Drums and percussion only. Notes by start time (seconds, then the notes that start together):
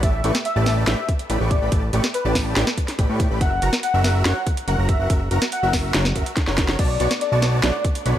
0.03 kick, closed hi-hat
0.24 closed hi-hat
0.35 snare, closed hi-hat
0.45 closed hi-hat
0.66 snare, open hi-hat
0.87 snare, closed hi-hat
1.09 kick, closed hi-hat
1.19 closed hi-hat
1.30 closed hi-hat
1.51 kick, closed hi-hat
1.72 kick, closed hi-hat
1.93 closed hi-hat
2.04 snare, closed hi-hat
2.14 closed hi-hat
2.35 kick, snare, open hi-hat
2.56 snare, closed hi-hat
2.67 snare
2.78 kick, closed hi-hat
2.88 snare, closed hi-hat
2.99 kick, closed hi-hat
3.20 kick, closed hi-hat
3.41 kick, closed hi-hat
3.62 closed hi-hat
3.73 snare, closed hi-hat
3.83 closed hi-hat
4.04 snare, open hi-hat
4.25 snare, closed hi-hat
4.47 kick, closed hi-hat
4.57 closed hi-hat
4.68 closed hi-hat
4.89 kick, closed hi-hat
5.10 kick, closed hi-hat
5.31 closed hi-hat
5.42 snare, closed hi-hat
5.52 closed hi-hat
5.73 kick, snare, open hi-hat
5.94 snare, closed hi-hat
6.05 snare
6.16 kick, closed hi-hat
6.26 closed hi-hat
6.37 kick, snare, closed hi-hat
6.47 snare
6.58 kick, snare, closed hi-hat
6.69 snare
6.79 kick, closed hi-hat, crash
7.00 closed hi-hat
7.11 snare, closed hi-hat
7.21 closed hi-hat
7.42 snare, closed hi-hat
7.63 snare, closed hi-hat
7.85 kick, closed hi-hat
7.95 closed hi-hat
8.06 closed hi-hat